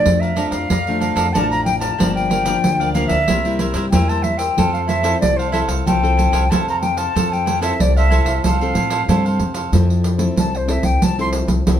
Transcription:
Already playing: nylon-string guitar F3 A3 D4, flute D5
0.06 upright bass F2, nylon-string guitar F2, pandeiro
0.20 cavaquinho D5 F5 A#5, flute E5, pandeiro
0.36 nylon-string guitar F3 A3 D4, cavaquinho A4 D5 F5 A#5, pandeiro
0.49 upright bass F2, flute F5, cavaquinho F5 A#5, pandeiro
0.53 cavaquinho D5
0.70 upright bass F2, cavaquinho D5 F5 A#5, pandeiro
0.87 nylon-string guitar F3 A3 D4, pandeiro
1.00 cavaquinho A4 D5 F5 A#5, pandeiro
1.16 upright bass F2, cavaquinho A4 D5 F5 A#5, pandeiro
1.33 upright bass A1, nylon-string guitar F2 F3 A3 D4, cavaquinho A4 D5 F5 A#5, flute A5, pandeiro
1.50 cavaquinho D5 F5 A#5, flute A#5, pandeiro
1.65 flute G5, pandeiro
1.79 cavaquinho D5 F5 A#5, flute A5, pandeiro
1.98 upright bass G1, nylon-string guitar G2 F3 A#3 D4, cavaquinho G4 A#4 D5 F5, pandeiro
2.15 flute G5, pandeiro
2.30 cavaquinho G4 A#4 D5 F5, pandeiro
2.45 nylon-string guitar F3 A#3 D4, cavaquinho G4 A#4 D5 F5, pandeiro
2.64 upright bass D2, nylon-string guitar D3, pandeiro
2.80 cavaquinho A#4 D5 F5, pandeiro
2.94 nylon-string guitar F3 A#3 D4, cavaquinho G4 A#4 D5 F5, flute F5, pandeiro
3.07 upright bass D2, cavaquinho D5 F5, flute E5, pandeiro
3.12 cavaquinho A#4
3.28 upright bass C2, nylon-string guitar C3 G3 A#3 E4, cavaquinho E4 A#4 C5 E5, pandeiro
3.45 nylon-string guitar G3 A#3 E4, pandeiro
3.59 cavaquinho E4 A#4 C5 E5, pandeiro
3.74 upright bass G2, cavaquinho E4 A#4 C5 E5, pandeiro
3.92 upright bass E2, nylon-string guitar G2 G3 A#3 E4, cavaquinho E4 A#4 C5 E5, flute G5, pandeiro
4.09 cavaquinho A#4 C5 E5, flute A5, pandeiro
4.23 flute E5, pandeiro
4.38 cavaquinho A#4 C5 E5, flute G5, pandeiro
4.57 upright bass F2, nylon-string guitar F3 C4 A4, cavaquinho A4 C5 F5, pandeiro
4.73 flute F5, pandeiro
4.87 cavaquinho E4 A4 C5 F5, flute E5, pandeiro
5.03 nylon-string guitar C4 E4 A4, cavaquinho E4 A4 C5 F5, pandeiro
5.21 upright bass C2, nylon-string guitar C3, flute D5, pandeiro
5.37 flute C5, cavaquinho C5 F5, pandeiro
5.41 cavaquinho A4
5.51 nylon-string guitar C4 E4 A4, cavaquinho E4 A4 C5 F5, flute E5, pandeiro
5.68 upright bass C2, cavaquinho A4 C5 F5, pandeiro
5.86 upright bass C2, nylon-string guitar F3, cavaquinho A4 C5 F5, flute G5, pandeiro
6.03 nylon-string guitar C4 E4 A4, pandeiro
6.17 cavaquinho E4 A4 C5 F5, pandeiro
6.32 upright bass C2, cavaquinho E4 A4 C5 F5, pandeiro
6.50 upright bass F2, nylon-string guitar C3 C4 A4, cavaquinho E4 A4 C5 F5, flute A5, pandeiro
6.68 cavaquinho A4 C5 F5, flute A#5, pandeiro
6.81 flute G5, pandeiro
6.97 cavaquinho A4 C5 F5, flute A5, pandeiro
7.15 upright bass F2, nylon-string guitar F3 C4 A4, cavaquinho A4 C5 F5, pandeiro
7.33 flute G5, pandeiro
7.46 cavaquinho E4 A4 C5 F5, pandeiro
7.61 nylon-string guitar C4 E4 A4, cavaquinho E4 A4 C5 F5, flute E5, pandeiro
7.80 upright bass C2, nylon-string guitar C3, flute D5, pandeiro
7.96 cavaquinho A4 C5 F5, flute E5, pandeiro
8.10 nylon-string guitar C4 E4 A4, cavaquinho E4 A4 C5 F5, pandeiro
8.25 upright bass C2, cavaquinho A4 C5 F5, pandeiro
8.44 upright bass C2, nylon-string guitar F3, cavaquinho A4 C5 F5, flute F5, pandeiro
8.61 nylon-string guitar C4 A4, pandeiro
8.75 upright bass A2, cavaquinho E4 A4 C5 F5, pandeiro
8.90 cavaquinho E4 A4 C5 F5, pandeiro
9.08 upright bass G2, nylon-string guitar C3 C4 A4, cavaquinho E4 A4 C5 F5, pandeiro
9.25 cavaquinho A4 C5 F5, pandeiro
9.39 upright bass F2, pandeiro
9.54 cavaquinho A4 C5 F5, pandeiro
9.72 upright bass F2, nylon-string guitar F3 C4 E4 A4, pandeiro
9.90 pandeiro
10.04 pandeiro
10.18 nylon-string guitar C4 E4 A4, pandeiro
10.36 upright bass C2, nylon-string guitar C3, flute A5, pandeiro
10.55 flute C5, pandeiro
10.68 nylon-string guitar C4 E4 A4, flute E5, pandeiro
10.83 upright bass C2, flute G5, pandeiro
11.02 upright bass C2, nylon-string guitar F3, flute A5, pandeiro
11.19 nylon-string guitar C4 E4 A4, flute C6, pandeiro
11.33 pandeiro
11.48 upright bass C2, pandeiro
11.66 upright bass C2, nylon-string guitar C3 C4 E4 A4, pandeiro

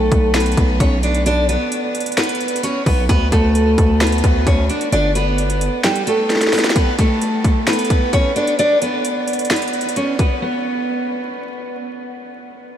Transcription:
Already playing: steel-string acoustic guitar A3 A4
0.12 808-style bass B1, kick, closed hi-hat
0.34 steel-string acoustic guitar B3 B4, finger snap, snare, closed hi-hat
0.40 closed hi-hat
0.46 closed hi-hat
0.52 closed hi-hat
0.57 808-style bass B1, kick, closed hi-hat
0.80 808-style bass B1, steel-string acoustic guitar C#4 C#5, kick, closed hi-hat
1.03 steel-string acoustic guitar D4 D5, closed hi-hat
1.15 closed hi-hat
1.26 steel-string acoustic guitar D4 D5, closed hi-hat
1.49 steel-string acoustic guitar B3 B4, closed hi-hat
1.72 closed hi-hat
1.95 closed hi-hat
2.00 closed hi-hat
2.06 closed hi-hat
2.12 closed hi-hat
2.17 steel-string acoustic guitar B3 B4, finger snap, snare, closed hi-hat
2.23 closed hi-hat
2.29 closed hi-hat
2.35 closed hi-hat
2.41 closed hi-hat
2.48 closed hi-hat
2.56 closed hi-hat
2.63 steel-string acoustic guitar C#4 C#5, closed hi-hat
2.86 808-style bass B1, steel-string acoustic guitar B3 B4, kick, open hi-hat
3.09 808-style bass D2, steel-string acoustic guitar B3 B4, kick, closed hi-hat
3.32 808-style bass D2, steel-string acoustic guitar A3 A4, kick, closed hi-hat
3.55 closed hi-hat
3.78 808-style bass D2, kick, closed hi-hat
4.00 steel-string acoustic guitar B3 B4, finger snap, snare, closed hi-hat
4.07 closed hi-hat
4.12 closed hi-hat
4.18 closed hi-hat
4.24 808-style bass D2, kick, closed hi-hat
4.47 808-style bass D2, steel-string acoustic guitar C#4 C#5, kick, closed hi-hat
4.69 steel-string acoustic guitar D4 D5, closed hi-hat
4.81 closed hi-hat
4.92 808-style bass G1, steel-string acoustic guitar D4 D5, closed hi-hat
5.15 steel-string acoustic guitar B3 B4, closed hi-hat
5.38 closed hi-hat
5.50 closed hi-hat
5.61 closed hi-hat
5.84 steel-string acoustic guitar G3 G4, finger snap, snare, closed hi-hat
5.96 closed hi-hat
6.07 steel-string acoustic guitar A3 A4, closed hi-hat
6.30 snare, closed hi-hat
6.36 snare
6.41 snare, closed hi-hat
6.47 snare
6.53 steel-string acoustic guitar B3 B4, snare, closed hi-hat, open hi-hat
6.58 snare, closed hi-hat
6.64 snare, closed hi-hat
6.70 snare, closed hi-hat
6.76 steel-string acoustic guitar B3 B4, kick, closed hi-hat
6.99 steel-string acoustic guitar A3 A4, kick, closed hi-hat
7.21 closed hi-hat
7.44 kick, closed hi-hat
7.67 steel-string acoustic guitar B3 B4, finger snap, snare, closed hi-hat
7.73 closed hi-hat
7.79 closed hi-hat
7.85 closed hi-hat
7.90 kick, closed hi-hat
8.13 steel-string acoustic guitar C#4 C#5, kick, closed hi-hat
8.36 steel-string acoustic guitar D4 D5, closed hi-hat
8.47 closed hi-hat
8.59 steel-string acoustic guitar D4 D5, closed hi-hat
8.82 steel-string acoustic guitar B3 B4, closed hi-hat
9.05 closed hi-hat
9.28 closed hi-hat
9.33 closed hi-hat
9.39 closed hi-hat
9.45 closed hi-hat
9.50 steel-string acoustic guitar B3 B4, finger snap, snare, closed hi-hat
9.56 closed hi-hat
9.62 closed hi-hat
9.68 closed hi-hat
9.73 closed hi-hat
9.81 closed hi-hat
9.89 closed hi-hat
9.96 steel-string acoustic guitar C#4 C#5, closed hi-hat
10.19 steel-string acoustic guitar B3 B4, kick, closed hi-hat
10.42 steel-string acoustic guitar B3

